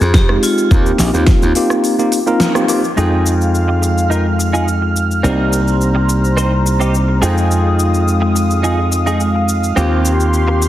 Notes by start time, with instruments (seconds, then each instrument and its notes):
Already playing: vibraphone G#4
0.01 slap bass F2, shaker
0.14 vibraphone G4, kick, snare, shaker
0.29 tine electric piano G#3 C4 D#4 F4 G4, cross-stick
0.43 vibraphone F4, open hi-hat, shaker
0.58 shaker
0.71 slap bass D#2, tine electric piano A#3 C4 D#4 F4 G4, kick, shaker
0.86 shaker
0.98 slap bass A#1, snare, open hi-hat, shaker
1.14 slap bass D#2, tine electric piano A#3 C4 D#4 F4 G4, shaker
1.26 kick, snare, shaker
1.42 slap bass D#2, shaker
1.55 tine electric piano A#3 C4 D#4 F4 G4, open hi-hat, shaker
1.70 cross-stick, shaker
1.84 open hi-hat, shaker
1.98 tine electric piano A#3 C4 D#4 F4 G4, shaker
2.12 open hi-hat, shaker
2.27 tine electric piano A#3 C4 D#4 F4 A#4, shaker
2.40 snare, shaker
2.55 tine electric piano A#3 C4 D#4 F4 G4, cross-stick, shaker
2.68 tine electric piano A#3 C4 D#4 F4 G4, open hi-hat, shaker
2.84 shaker
2.96 slap bass F2, tine electric piano G#3 C4 D#4 F4 G5, analog synth pad G#3 F5 F6, clean electric guitar D#4 F4 G#4, shaker
3.26 shaker
3.41 shaker
3.55 shaker
3.68 muted clean electric guitar stroke
3.82 muted clean electric guitar stroke, shaker
3.98 shaker
4.10 clean electric guitar D#4 F4 A#4, shaker
4.38 muted clean electric guitar stroke, shaker
4.53 clean electric guitar D#4 F4 G#4, shaker
4.68 shaker
4.82 muted clean electric guitar stroke
4.96 shaker
5.11 shaker
5.23 slap bass C2, tine electric piano A#3 C4 D#4 G4 D5, clean electric guitar C4 D#4 A#4, analog synth pad C5 A#5, shaker
5.53 shaker
5.68 shaker
5.81 shaker
5.95 muted clean electric guitar stroke
6.09 muted clean electric guitar stroke, shaker
6.24 shaker
6.37 clean electric guitar C4 D#4 C5, shaker
6.65 muted clean electric guitar stroke, shaker
6.80 clean electric guitar C4 D#4 G4, shaker
6.94 shaker
7.08 muted clean electric guitar stroke
7.21 slap bass F2, tine electric piano G#3 C4 D#4 F4 G5, analog synth pad G#3 F5 D#6, clean electric guitar D#4 F4 G#4, shaker
7.38 shaker
7.51 shaker
7.79 shaker
7.94 shaker
8.08 shaker
8.21 muted clean electric guitar stroke
8.35 muted clean electric guitar stroke, shaker
8.50 shaker
8.63 clean electric guitar D#4 F4 G#4, shaker
8.92 muted clean electric guitar stroke, shaker
9.06 clean electric guitar D#4 F4 G#4, shaker
9.20 shaker
9.35 muted clean electric guitar stroke
9.49 shaker
9.64 shaker
9.76 slap bass D#2, tine electric piano A#3 C4 D#4 F4 G4, clean electric guitar C4 F4 G4, analog synth pad G4 C6, shaker
10.05 shaker
10.20 shaker
10.34 shaker
10.48 muted clean electric guitar stroke
10.61 muted clean electric guitar stroke, shaker